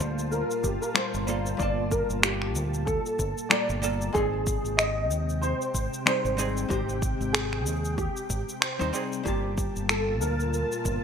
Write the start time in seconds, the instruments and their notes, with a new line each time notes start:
Already playing: string machine A#2 F4 A5, hollow-body jazz guitar G3 A#3 F4 A5, grand piano C5
0.00 fingered electric bass D2, shaker
0.19 shaker
0.31 grand piano A#4, shaker
0.51 shaker
0.63 fingered electric bass G1, grand piano G4, kick, shaker
0.81 grand piano A#4, shaker
0.94 hollow-body jazz guitar G3 A#3 F4 A4, grand piano C5, finger snap, shaker
1.14 fingered electric bass G1, shaker
1.27 hollow-body jazz guitar G3 A#3 F4 A4, shaker
1.46 shaker
1.57 fingered electric bass G1, hollow-body jazz guitar G3 A#3 F4, grand piano D5, kick, shaker
1.62 hollow-body jazz guitar A5
1.91 grand piano A#4, kick, shaker
2.10 fingered electric bass G1, shaker
2.22 grand piano G4, finger snap, shaker
2.42 finger snap
2.56 fingered electric bass D2, shaker
2.74 shaker
2.85 grand piano A4, kick, shaker
3.06 shaker
3.19 fingered electric bass G1, kick, shaker
3.38 shaker
3.49 hollow-body jazz guitar G3 A#3 F4 A4, grand piano D5, finger snap, shaker
3.70 fingered electric bass G1, shaker
3.82 hollow-body jazz guitar G3 A#3 F4 A4, shaker
4.02 shaker
4.13 fingered electric bass G#1, string machine C3 G5, hollow-body jazz guitar G#3 C4 D#4, grand piano G#4, kick, shaker
4.17 hollow-body jazz guitar G#4
4.47 kick, shaker
4.65 fingered electric bass G#1, shaker
4.77 grand piano D#5, finger snap, shaker
5.10 fingered electric bass D#2, shaker
5.29 shaker
5.42 grand piano C5, shaker
5.62 shaker
5.74 fingered electric bass G#1, kick, shaker
5.94 shaker
6.06 hollow-body jazz guitar G3 C4 D#4 G#4, grand piano C5, finger snap, shaker
6.25 fingered electric bass G#1, shaker
6.37 hollow-body jazz guitar G3 C4 D#4 G#4, shaker
6.57 shaker
6.69 fingered electric bass G#1, hollow-body jazz guitar G#3 C4 D#4, grand piano G4, kick, shaker
6.73 hollow-body jazz guitar C5
6.89 shaker
7.02 kick, shaker
7.21 fingered electric bass G#1, shaker
7.33 grand piano G#4, finger snap, shaker
7.53 finger snap
7.66 fingered electric bass D#2, shaker
7.85 shaker
7.97 grand piano G4, kick, shaker
8.17 shaker
8.30 fingered electric bass G#1, kick, shaker
8.49 shaker
8.61 grand piano C5, finger snap, shaker
8.79 fingered electric bass D#2, hollow-body jazz guitar G3 C4 D#4 C5, shaker
8.93 hollow-body jazz guitar G3 C4 D#4 G#4, shaker
9.12 shaker
9.23 fingered electric bass G1, string machine A#2 F4 A5, hollow-body jazz guitar G3 A#3 F4, grand piano G4, kick, shaker
9.28 hollow-body jazz guitar A5
9.58 kick, shaker
9.76 fingered electric bass G1, shaker
9.89 grand piano A4, finger snap, shaker
10.21 fingered electric bass D2, grand piano A#4, shaker
10.40 shaker
10.54 shaker
10.72 shaker
10.85 fingered electric bass G1, kick, shaker